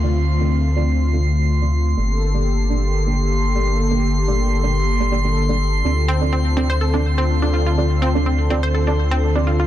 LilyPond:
<<
  \new Staff \with { instrumentName = "Synth texture" } { \time 4/4 \key d \minor \tempo 4 = 124 c'''1~ | c'''1~ | c'''1~ | c'''1~ |
c'''1 | }
  \new Staff \with { instrumentName = "Synth stab" } { \time 4/4 \key d \minor <c' d' f' a' d''>16 r8 <c' d' f' a' d''>8. <c' d' f' a' d''>16 r8 <c' d' f' a' d''>16 r8. <c' d' f' a' d''>8. | <bes d' g' a' d''>16 r8 <bes d' g' a' d''>8. <bes d' g' a' d''>16 r8 <bes d' g' a' d''>16 r8. <bes d' g' a' d''>8. | <bes d' g' a' d''>16 r8 <bes d' g' a' d''>8. <bes d' g' a' d''>16 r8 <bes d' g' a' d''>16 <bes d' g' a' d''>16 <bes d' g' a' d''>16 r16 <bes d' g' a' d''>16 r8 | <c' d' f' a' d''>16 r8 <c' d' f' a' d''>8. <c' d' f' a' d''>16 r8 <c' d' f' a' d''>16 r8. <c' d' f' a' d''>8. |
<c' d' f' a' d''>16 r8 <c' d' f' a' d''>8. <c' d' f' a' d''>16 r8 <c' d' f' a' d''>16 r8. <c' d' f' a' d''>8. | }
  \new Staff \with { instrumentName = "Synth pluck" } { \time 4/4 \key d \minor r1 | r1 | r1 | r8 c'16 r16 c'16 r16 c'16 c''16 a'16 d'16 r16 c'16 r16 d'16 f'16 f'16 |
r8 c'16 r16 c'16 r16 c'16 c''16 a'16 d'16 r16 c'16 r16 d'16 f'16 f'16 | }
  \new Staff \with { instrumentName = "Analog synth pad" } { \time 4/4 \key d \minor << { <c' f'>1 | <bes g'>1~ | <bes g'>1 | <c' f'>1~ |
<c' f'>1 | } \\ { <d a>1 | <d a'>1~ | <d a'>1~ | <d a'>1~ |
<d a'>1 | } >> }
  \new Staff \with { instrumentName = "Sub bass" } { \clef bass \time 4/4 \key d \minor d,1 | g,,1~ | g,,1 | d,1~ |
d,1 | }
>>